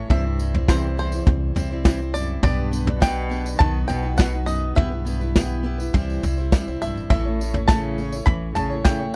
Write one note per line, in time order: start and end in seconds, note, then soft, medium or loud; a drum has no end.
0.00 0.11 C#4 medium
0.00 0.11 E4 medium
0.00 0.12 C#5 medium
0.00 0.10 F#5 medium
0.10 1.22 C2 medium
0.10 0.64 G2 medium
0.10 0.24 C3 medium
0.10 0.25 E3 medium
0.10 0.25 G3 medium
0.10 0.25 C4 medium
0.10 0.24 E4 medium
0.10 0.23 C5 loud
0.10 0.70 E5 medium
0.10 kick loud
0.10 floor tom loud
0.10 tambourine soft
0.24 0.38 G3 soft
0.24 0.39 C4 soft
0.24 0.39 E4 soft
0.24 0.39 C5 soft
0.39 0.54 G3 medium
0.39 0.54 C4 medium
0.39 0.54 E4 medium
0.39 0.53 C5 medium
0.39 tambourine medium
0.54 0.69 G3 soft
0.54 0.69 C4 soft
0.54 0.69 E4 soft
0.54 0.68 C5 soft
0.54 floor tom medium
0.68 0.95 E2 medium
0.68 0.98 C3 medium
0.68 0.98 E3 medium
0.68 0.96 G3 medium
0.68 0.98 C4 medium
0.68 0.98 E4 medium
0.68 0.98 C5 medium
0.68 0.99 C5 medium
0.68 kick loud
0.68 snare loud
0.68 tambourine medium
0.97 1.51 E2 medium
0.97 1.12 G3 medium
0.97 1.13 C4 medium
0.97 1.13 E4 medium
0.97 1.53 C5 medium
0.97 1.12 C5 medium
0.97 tambourine soft
1.12 1.54 G3 soft
1.12 1.55 C4 soft
1.12 1.56 E4 soft
1.12 1.56 C5 soft
1.12 tambourine medium
1.27 1.53 C2 loud
1.27 kick loud
1.27 floor tom loud
1.55 2.39 C2 medium
1.55 1.70 G3 medium
1.55 1.71 C4 medium
1.55 1.70 E4 medium
1.55 1.70 C5 medium
1.55 floor tom medium
1.55 tambourine medium
1.71 1.84 G3 medium
1.71 1.85 C4 medium
1.71 1.85 E4 medium
1.71 1.85 C5 medium
1.84 1.99 C3 medium
1.84 1.99 E3 medium
1.84 2.00 G3 medium
1.84 2.00 C4 loud
1.84 1.99 E4 medium
1.84 1.98 C5 medium
1.84 kick loud
1.84 snare loud
1.84 tambourine loud
1.99 2.12 G3 soft
1.99 2.14 C4 soft
1.99 2.14 E4 soft
1.99 2.14 C5 soft
2.14 2.42 F#2 medium
2.14 2.43 G3 medium
2.14 2.44 C4 medium
2.14 2.44 E4 medium
2.14 2.45 C5 medium
2.14 2.43 D5 medium
2.14 tambourine medium
2.42 3.56 B1 loud
2.42 2.97 G2 medium
2.42 2.70 B3 medium
2.42 2.71 D4 medium
2.42 2.72 G4 loud
2.42 2.73 B4 medium
2.42 2.98 D5 medium
2.42 kick loud
2.42 floor tom loud
2.42 tambourine soft
2.71 2.86 B3 medium
2.71 2.87 D4 medium
2.71 2.87 G4 medium
2.71 2.85 B4 medium
2.71 tambourine medium
2.86 3.00 D4 soft
2.86 3.01 G4 soft
2.86 3.01 B4 medium
2.86 floor tom medium
2.99 3.55 B2 loud
2.99 3.28 B3 medium
2.99 3.29 D4 medium
2.99 3.30 G4 medium
2.99 3.31 B4 medium
2.99 3.56 G5 medium
2.99 kick loud
2.99 snare loud
2.99 tambourine medium
3.29 3.45 B3 medium
3.29 3.45 D4 medium
3.29 3.44 G4 medium
3.29 3.43 B4 medium
3.29 tambourine soft
3.44 3.59 D4 soft
3.44 3.60 G4 soft
3.44 3.59 B4 medium
3.44 tambourine medium
3.58 3.87 B1 loud
3.58 3.89 B2 medium
3.58 3.86 D#3 medium
3.58 3.89 F#3 medium
3.58 3.86 B3 medium
3.58 3.88 D#4 medium
3.58 3.89 F#4 medium
3.58 3.89 B4 medium
3.58 3.87 A5 loud
3.58 kick loud
3.58 floor tom loud
3.87 4.73 B1 medium
3.87 4.16 B2 medium
3.87 4.03 B3 medium
3.87 4.03 D#4 medium
3.87 4.02 F#4 medium
3.87 4.01 B4 medium
3.87 4.17 G5 medium
3.87 floor tom medium
3.87 tambourine medium
4.02 4.17 B3 soft
4.02 4.17 D#4 soft
4.02 4.17 F#4 soft
4.02 4.18 B4 medium
4.17 4.32 B2 medium
4.17 4.44 B2 medium
4.17 4.33 F#3 medium
4.17 4.33 B3 medium
4.17 4.32 D#4 medium
4.17 4.32 F#4 medium
4.17 4.30 B4 medium
4.17 4.48 F#5 medium
4.17 kick loud
4.17 snare loud
4.17 tambourine medium
4.31 4.44 B3 soft
4.31 4.45 D#4 soft
4.31 4.47 F#4 soft
4.31 4.47 B4 soft
4.45 4.73 F#2 medium
4.45 4.75 B3 medium
4.45 4.76 D#4 medium
4.45 4.77 F#4 medium
4.45 4.77 B4 medium
4.45 4.76 D#5 medium
4.45 tambourine medium
4.75 5.90 B1 medium
4.75 5.89 G2 medium
4.75 4.91 B2 medium
4.75 4.91 E3 medium
4.75 4.91 B3 medium
4.75 4.91 E4 medium
4.75 4.90 G4 medium
4.75 4.89 B4 medium
4.75 5.89 E5 medium
4.75 kick loud
4.75 floor tom loud
4.90 5.04 B3 soft
4.90 5.05 E4 soft
4.90 5.06 G4 soft
4.90 5.05 B4 soft
5.05 5.20 B3 medium
5.05 5.21 E4 medium
5.05 5.20 G4 medium
5.05 5.19 B4 medium
5.05 tambourine medium
5.20 5.35 B3 soft
5.20 5.35 E4 soft
5.20 5.35 G4 soft
5.20 5.35 B4 soft
5.20 tambourine soft
5.35 5.64 B2 medium
5.35 5.65 E3 medium
5.35 5.62 B3 medium
5.35 5.63 E4 medium
5.35 5.64 G4 medium
5.35 5.65 B4 medium
5.35 kick loud
5.35 snare loud
5.35 tambourine medium
5.63 5.78 B3 medium
5.63 5.79 E4 medium
5.63 5.78 G4 medium
5.63 5.77 B4 medium
5.78 5.94 B3 soft
5.78 5.94 E4 soft
5.78 5.94 G4 soft
5.78 5.93 B4 medium
5.78 tambourine medium
5.93 6.20 C2 loud
5.93 6.23 C3 medium
5.93 6.23 E3 medium
5.93 6.21 G3 loud
5.93 6.23 C4 medium
5.93 6.24 E4 medium
5.93 6.24 C5 loud
5.93 kick medium
5.93 floor tom loud
5.93 tambourine soft
6.10 tambourine soft
6.22 6.50 C2 medium
6.22 6.37 G3 medium
6.22 6.38 C4 medium
6.22 6.38 E4 medium
6.22 6.36 C5 medium
6.22 floor tom medium
6.22 tambourine medium
6.38 6.52 G3 soft
6.38 6.53 C4 soft
6.38 6.53 E4 medium
6.38 6.52 C5 medium
6.38 tambourine soft
6.52 6.65 D2 medium
6.52 6.67 C3 medium
6.52 6.67 E3 medium
6.52 6.67 G3 medium
6.52 6.67 C4 medium
6.52 6.66 E4 medium
6.52 6.65 C5 medium
6.52 kick loud
6.52 snare loud
6.52 tambourine medium
6.66 6.80 C2 medium
6.66 6.80 G3 soft
6.66 6.81 C4 soft
6.66 6.82 E4 soft
6.66 6.81 C5 soft
6.66 tambourine soft
6.81 6.95 B1 medium
6.81 7.08 G2 medium
6.81 7.10 G3 medium
6.81 7.11 C4 medium
6.81 7.11 E4 medium
6.81 7.12 C5 medium
6.81 7.09 E5 medium
6.81 tambourine medium
6.96 7.09 A1 medium
6.96 tambourine soft
7.10 8.23 A1 loud
7.10 7.25 A2 medium
7.10 7.65 A2 medium
7.10 7.25 E3 medium
7.10 7.26 A3 medium
7.10 7.26 C#4 medium
7.10 7.25 E4 medium
7.10 7.24 C#5 medium
7.10 7.70 E5 medium
7.10 kick loud
7.10 floor tom loud
7.10 tambourine soft
7.25 7.39 A3 soft
7.25 7.40 C#4 soft
7.25 7.40 E4 soft
7.25 7.40 C#5 soft
7.40 7.55 A3 medium
7.40 7.55 C#4 medium
7.40 7.54 E4 medium
7.40 7.53 C#5 medium
7.40 tambourine medium
7.54 7.69 A3 soft
7.54 7.69 C#4 soft
7.54 7.69 E4 soft
7.54 7.69 C#5 soft
7.54 floor tom medium
7.68 7.98 A2 medium
7.68 8.23 C#3 medium
7.68 7.98 E3 medium
7.68 7.96 A3 medium
7.68 7.97 C#4 medium
7.68 7.99 E4 medium
7.68 7.99 C#5 medium
7.68 8.25 A5 medium
7.68 kick loud
7.68 snare loud
7.68 tambourine medium
7.98 8.12 A3 medium
7.98 8.13 C#4 medium
7.98 8.12 E4 medium
7.98 8.11 C#5 medium
7.98 tambourine soft
8.12 8.54 A3 soft
8.12 8.55 C#4 soft
8.12 8.56 E4 soft
8.12 8.56 C#5 medium
8.12 tambourine medium
8.26 8.54 A1 loud
8.26 8.54 E3 medium
8.26 8.55 B5 medium
8.26 kick loud
8.26 floor tom loud
8.55 9.16 A1 medium
8.55 8.83 C#3 medium
8.55 8.70 A3 medium
8.55 8.71 C#4 medium
8.55 8.70 E4 medium
8.55 8.69 C#5 medium
8.55 8.84 A5 medium
8.55 floor tom medium
8.55 tambourine medium
8.70 8.85 A3 soft
8.70 8.85 C#4 soft
8.70 8.86 E4 medium
8.70 8.85 C#5 medium
8.84 9.00 A2 medium
8.84 9.12 C#3 medium
8.84 9.00 E3 medium
8.84 9.00 A3 medium
8.84 9.01 C#4 medium
8.84 9.00 E4 medium
8.84 8.98 C#5 medium
8.84 9.14 G5 medium
8.84 kick loud
8.84 snare loud
8.84 tambourine medium
9.00 9.13 A3 soft
9.00 9.14 C#4 soft
9.00 9.15 E4 soft
9.00 9.14 C#5 soft